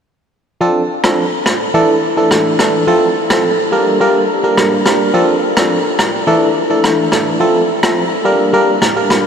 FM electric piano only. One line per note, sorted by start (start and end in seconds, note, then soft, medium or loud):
0.61 0.82 F3 medium
0.61 0.82 C4 medium
0.61 0.83 D4 medium
0.61 0.83 A4 medium
1.04 1.25 F3 medium
1.04 1.25 C4 medium
1.04 1.25 D4 medium
1.04 1.25 A4 medium
1.74 1.96 E3 medium
1.74 1.96 A3 medium
1.74 1.96 D4 medium
1.74 1.96 A4 loud
2.17 2.56 E3 medium
2.17 2.56 A3 medium
2.17 2.56 D4 medium
2.17 2.56 A4 medium
2.59 2.85 E3 medium
2.59 2.85 A3 medium
2.59 2.85 D4 medium
2.59 2.85 A4 medium
2.87 3.09 F3 medium
2.87 3.09 A3 medium
2.87 3.09 C4 medium
2.87 3.09 A4 loud
3.30 3.51 F3 medium
3.30 3.51 A3 medium
3.30 3.51 C4 medium
3.30 3.52 A4 medium
3.72 3.98 G3 medium
3.72 3.98 A#3 medium
3.72 3.99 D4 medium
3.72 3.99 A#4 medium
4.00 4.22 G3 medium
4.00 4.22 A#3 medium
4.00 4.22 D4 medium
4.00 4.22 A#4 loud
4.44 4.82 G3 medium
4.44 4.82 A#3 medium
4.44 4.82 D4 medium
4.44 4.83 A#4 medium
4.85 5.12 G3 medium
4.85 5.12 A#3 medium
4.85 5.12 D4 medium
4.85 5.12 A#4 medium
5.14 5.35 F3 medium
5.14 5.35 C4 medium
5.14 5.35 D4 medium
5.14 5.36 A4 loud
5.57 5.78 F3 medium
5.57 5.78 C4 medium
5.57 5.78 D4 medium
5.57 5.78 A4 medium
6.27 6.48 E3 medium
6.27 6.49 A3 medium
6.27 6.49 D4 medium
6.27 6.49 A4 loud
6.70 7.09 E3 medium
6.70 7.09 A3 medium
6.70 7.09 D4 medium
6.70 7.09 A4 medium
7.12 7.38 E3 medium
7.12 7.38 A3 medium
7.12 7.38 D4 medium
7.12 7.38 A4 medium
7.40 7.62 F3 medium
7.40 7.62 A3 medium
7.40 7.62 C4 medium
7.40 7.62 A4 medium
7.83 8.04 F3 medium
7.83 8.04 A3 medium
7.83 8.04 C4 medium
7.83 8.04 A4 medium
8.25 8.51 G3 medium
8.25 8.51 A#3 medium
8.25 8.51 D4 medium
8.25 8.51 A#4 medium
8.53 8.75 G3 medium
8.53 8.75 A#3 medium
8.53 8.75 D4 medium
8.53 8.75 A#4 loud
8.96 9.27 G3 medium
8.96 9.27 A#3 medium
8.96 9.27 D4 medium
8.96 9.27 A#4 medium